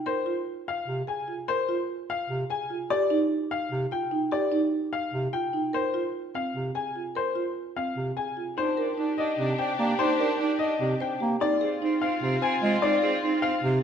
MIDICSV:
0, 0, Header, 1, 6, 480
1, 0, Start_track
1, 0, Tempo, 405405
1, 71, Time_signature, 7, 3, 24, 8
1, 16376, End_track
2, 0, Start_track
2, 0, Title_t, "Grand piano"
2, 0, Program_c, 0, 0
2, 75, Note_on_c, 0, 72, 76
2, 384, Note_off_c, 0, 72, 0
2, 806, Note_on_c, 0, 77, 73
2, 1108, Note_off_c, 0, 77, 0
2, 1280, Note_on_c, 0, 80, 59
2, 1586, Note_off_c, 0, 80, 0
2, 1755, Note_on_c, 0, 72, 81
2, 2065, Note_off_c, 0, 72, 0
2, 2484, Note_on_c, 0, 77, 80
2, 2788, Note_off_c, 0, 77, 0
2, 2964, Note_on_c, 0, 80, 63
2, 3267, Note_off_c, 0, 80, 0
2, 3438, Note_on_c, 0, 74, 87
2, 3746, Note_off_c, 0, 74, 0
2, 4158, Note_on_c, 0, 77, 73
2, 4465, Note_off_c, 0, 77, 0
2, 4641, Note_on_c, 0, 79, 70
2, 4947, Note_off_c, 0, 79, 0
2, 5116, Note_on_c, 0, 74, 77
2, 5425, Note_off_c, 0, 74, 0
2, 5833, Note_on_c, 0, 77, 76
2, 6144, Note_off_c, 0, 77, 0
2, 6311, Note_on_c, 0, 79, 73
2, 6623, Note_off_c, 0, 79, 0
2, 6800, Note_on_c, 0, 72, 82
2, 7106, Note_off_c, 0, 72, 0
2, 7520, Note_on_c, 0, 77, 68
2, 7826, Note_off_c, 0, 77, 0
2, 7994, Note_on_c, 0, 80, 66
2, 8304, Note_off_c, 0, 80, 0
2, 8483, Note_on_c, 0, 72, 77
2, 8787, Note_off_c, 0, 72, 0
2, 9194, Note_on_c, 0, 77, 68
2, 9504, Note_off_c, 0, 77, 0
2, 9669, Note_on_c, 0, 80, 59
2, 9982, Note_off_c, 0, 80, 0
2, 10154, Note_on_c, 0, 72, 81
2, 10464, Note_off_c, 0, 72, 0
2, 10866, Note_on_c, 0, 75, 72
2, 11181, Note_off_c, 0, 75, 0
2, 11350, Note_on_c, 0, 79, 68
2, 11663, Note_off_c, 0, 79, 0
2, 11827, Note_on_c, 0, 72, 85
2, 12142, Note_off_c, 0, 72, 0
2, 12536, Note_on_c, 0, 75, 77
2, 12858, Note_off_c, 0, 75, 0
2, 13040, Note_on_c, 0, 79, 66
2, 13346, Note_off_c, 0, 79, 0
2, 13512, Note_on_c, 0, 74, 90
2, 13823, Note_off_c, 0, 74, 0
2, 14226, Note_on_c, 0, 77, 78
2, 14541, Note_off_c, 0, 77, 0
2, 14708, Note_on_c, 0, 80, 78
2, 15022, Note_off_c, 0, 80, 0
2, 15181, Note_on_c, 0, 74, 86
2, 15500, Note_off_c, 0, 74, 0
2, 15892, Note_on_c, 0, 77, 90
2, 16216, Note_off_c, 0, 77, 0
2, 16376, End_track
3, 0, Start_track
3, 0, Title_t, "Marimba"
3, 0, Program_c, 1, 12
3, 0, Note_on_c, 1, 63, 53
3, 71, Note_on_c, 1, 70, 77
3, 142, Note_off_c, 1, 63, 0
3, 309, Note_on_c, 1, 65, 77
3, 383, Note_off_c, 1, 70, 0
3, 622, Note_off_c, 1, 65, 0
3, 1272, Note_on_c, 1, 68, 63
3, 1514, Note_on_c, 1, 65, 56
3, 1583, Note_off_c, 1, 68, 0
3, 1755, Note_on_c, 1, 70, 78
3, 1824, Note_off_c, 1, 65, 0
3, 1997, Note_on_c, 1, 65, 88
3, 2064, Note_off_c, 1, 70, 0
3, 2305, Note_off_c, 1, 65, 0
3, 2958, Note_on_c, 1, 68, 64
3, 3200, Note_on_c, 1, 65, 70
3, 3266, Note_off_c, 1, 68, 0
3, 3439, Note_on_c, 1, 67, 92
3, 3506, Note_off_c, 1, 65, 0
3, 3675, Note_on_c, 1, 63, 94
3, 3746, Note_off_c, 1, 67, 0
3, 3984, Note_off_c, 1, 63, 0
3, 4635, Note_on_c, 1, 65, 65
3, 4871, Note_on_c, 1, 63, 72
3, 4944, Note_off_c, 1, 65, 0
3, 5110, Note_on_c, 1, 67, 86
3, 5183, Note_off_c, 1, 63, 0
3, 5348, Note_on_c, 1, 63, 91
3, 5423, Note_off_c, 1, 67, 0
3, 5662, Note_off_c, 1, 63, 0
3, 6311, Note_on_c, 1, 65, 70
3, 6550, Note_on_c, 1, 63, 62
3, 6623, Note_off_c, 1, 65, 0
3, 6788, Note_on_c, 1, 70, 78
3, 6863, Note_off_c, 1, 63, 0
3, 7032, Note_on_c, 1, 65, 79
3, 7102, Note_off_c, 1, 70, 0
3, 7343, Note_off_c, 1, 65, 0
3, 7514, Note_on_c, 1, 60, 65
3, 7824, Note_off_c, 1, 60, 0
3, 7991, Note_on_c, 1, 68, 54
3, 8237, Note_on_c, 1, 65, 55
3, 8303, Note_off_c, 1, 68, 0
3, 8471, Note_on_c, 1, 70, 75
3, 8545, Note_off_c, 1, 65, 0
3, 8708, Note_on_c, 1, 65, 78
3, 8783, Note_off_c, 1, 70, 0
3, 9022, Note_off_c, 1, 65, 0
3, 9196, Note_on_c, 1, 60, 61
3, 9505, Note_off_c, 1, 60, 0
3, 9674, Note_on_c, 1, 68, 58
3, 9910, Note_on_c, 1, 65, 55
3, 9984, Note_off_c, 1, 68, 0
3, 10147, Note_on_c, 1, 63, 64
3, 10223, Note_off_c, 1, 65, 0
3, 10388, Note_on_c, 1, 70, 89
3, 10462, Note_off_c, 1, 63, 0
3, 10628, Note_on_c, 1, 63, 72
3, 10702, Note_off_c, 1, 70, 0
3, 10942, Note_off_c, 1, 63, 0
3, 11115, Note_on_c, 1, 60, 62
3, 11349, Note_on_c, 1, 72, 73
3, 11424, Note_off_c, 1, 60, 0
3, 11587, Note_on_c, 1, 67, 63
3, 11662, Note_off_c, 1, 72, 0
3, 11827, Note_on_c, 1, 63, 71
3, 11902, Note_off_c, 1, 67, 0
3, 12066, Note_on_c, 1, 70, 90
3, 12141, Note_off_c, 1, 63, 0
3, 12304, Note_on_c, 1, 63, 80
3, 12381, Note_off_c, 1, 70, 0
3, 12621, Note_off_c, 1, 63, 0
3, 12784, Note_on_c, 1, 60, 70
3, 13030, Note_on_c, 1, 72, 88
3, 13101, Note_off_c, 1, 60, 0
3, 13265, Note_on_c, 1, 67, 65
3, 13343, Note_off_c, 1, 72, 0
3, 13503, Note_on_c, 1, 63, 73
3, 13581, Note_off_c, 1, 67, 0
3, 13748, Note_on_c, 1, 68, 95
3, 13820, Note_off_c, 1, 63, 0
3, 13995, Note_on_c, 1, 63, 81
3, 14062, Note_off_c, 1, 68, 0
3, 14304, Note_off_c, 1, 63, 0
3, 14463, Note_on_c, 1, 60, 67
3, 14699, Note_on_c, 1, 72, 85
3, 14780, Note_off_c, 1, 60, 0
3, 14942, Note_on_c, 1, 65, 67
3, 15019, Note_off_c, 1, 72, 0
3, 15186, Note_on_c, 1, 63, 71
3, 15260, Note_off_c, 1, 65, 0
3, 15420, Note_on_c, 1, 68, 94
3, 15501, Note_off_c, 1, 63, 0
3, 15671, Note_on_c, 1, 63, 80
3, 15739, Note_off_c, 1, 68, 0
3, 15983, Note_off_c, 1, 63, 0
3, 16145, Note_on_c, 1, 60, 67
3, 16376, Note_off_c, 1, 60, 0
3, 16376, End_track
4, 0, Start_track
4, 0, Title_t, "String section"
4, 0, Program_c, 2, 48
4, 10153, Note_on_c, 2, 67, 75
4, 10156, Note_on_c, 2, 62, 75
4, 13225, Note_off_c, 2, 67, 0
4, 13226, Note_off_c, 2, 62, 0
4, 13510, Note_on_c, 2, 65, 84
4, 13513, Note_on_c, 2, 60, 73
4, 16376, Note_off_c, 2, 60, 0
4, 16376, Note_off_c, 2, 65, 0
4, 16376, End_track
5, 0, Start_track
5, 0, Title_t, "Soprano saxophone"
5, 0, Program_c, 3, 64
5, 10160, Note_on_c, 3, 62, 38
5, 10325, Note_off_c, 3, 62, 0
5, 10393, Note_on_c, 3, 62, 50
5, 10560, Note_off_c, 3, 62, 0
5, 10628, Note_on_c, 3, 62, 60
5, 10797, Note_off_c, 3, 62, 0
5, 10872, Note_on_c, 3, 62, 72
5, 11040, Note_off_c, 3, 62, 0
5, 11105, Note_on_c, 3, 62, 69
5, 11275, Note_off_c, 3, 62, 0
5, 11354, Note_on_c, 3, 62, 67
5, 11521, Note_off_c, 3, 62, 0
5, 11586, Note_on_c, 3, 62, 75
5, 11756, Note_off_c, 3, 62, 0
5, 11819, Note_on_c, 3, 62, 77
5, 11991, Note_off_c, 3, 62, 0
5, 12057, Note_on_c, 3, 62, 83
5, 12230, Note_off_c, 3, 62, 0
5, 12294, Note_on_c, 3, 62, 68
5, 12468, Note_off_c, 3, 62, 0
5, 12540, Note_on_c, 3, 62, 65
5, 12712, Note_off_c, 3, 62, 0
5, 12789, Note_on_c, 3, 62, 45
5, 12958, Note_off_c, 3, 62, 0
5, 13020, Note_on_c, 3, 62, 38
5, 13192, Note_off_c, 3, 62, 0
5, 13506, Note_on_c, 3, 60, 37
5, 13676, Note_off_c, 3, 60, 0
5, 13745, Note_on_c, 3, 60, 51
5, 13915, Note_off_c, 3, 60, 0
5, 13991, Note_on_c, 3, 60, 63
5, 14159, Note_off_c, 3, 60, 0
5, 14232, Note_on_c, 3, 60, 65
5, 14400, Note_off_c, 3, 60, 0
5, 14463, Note_on_c, 3, 60, 74
5, 14634, Note_off_c, 3, 60, 0
5, 14698, Note_on_c, 3, 60, 78
5, 14871, Note_off_c, 3, 60, 0
5, 14951, Note_on_c, 3, 60, 83
5, 15119, Note_off_c, 3, 60, 0
5, 15177, Note_on_c, 3, 60, 78
5, 15350, Note_off_c, 3, 60, 0
5, 15422, Note_on_c, 3, 60, 87
5, 15593, Note_off_c, 3, 60, 0
5, 15660, Note_on_c, 3, 60, 68
5, 15832, Note_off_c, 3, 60, 0
5, 15890, Note_on_c, 3, 60, 67
5, 16065, Note_off_c, 3, 60, 0
5, 16141, Note_on_c, 3, 60, 49
5, 16312, Note_off_c, 3, 60, 0
5, 16376, End_track
6, 0, Start_track
6, 0, Title_t, "Bass clarinet"
6, 0, Program_c, 4, 71
6, 1039, Note_on_c, 4, 48, 62
6, 1216, Note_off_c, 4, 48, 0
6, 2716, Note_on_c, 4, 48, 65
6, 2894, Note_off_c, 4, 48, 0
6, 4397, Note_on_c, 4, 48, 70
6, 4575, Note_off_c, 4, 48, 0
6, 6080, Note_on_c, 4, 48, 72
6, 6257, Note_off_c, 4, 48, 0
6, 7757, Note_on_c, 4, 48, 59
6, 7935, Note_off_c, 4, 48, 0
6, 9433, Note_on_c, 4, 48, 59
6, 9613, Note_off_c, 4, 48, 0
6, 11111, Note_on_c, 4, 48, 74
6, 11291, Note_off_c, 4, 48, 0
6, 11589, Note_on_c, 4, 58, 80
6, 11770, Note_off_c, 4, 58, 0
6, 12791, Note_on_c, 4, 48, 71
6, 12971, Note_off_c, 4, 48, 0
6, 13282, Note_on_c, 4, 58, 75
6, 13458, Note_off_c, 4, 58, 0
6, 14467, Note_on_c, 4, 48, 69
6, 14648, Note_off_c, 4, 48, 0
6, 14949, Note_on_c, 4, 56, 91
6, 15130, Note_off_c, 4, 56, 0
6, 16143, Note_on_c, 4, 48, 88
6, 16326, Note_off_c, 4, 48, 0
6, 16376, End_track
0, 0, End_of_file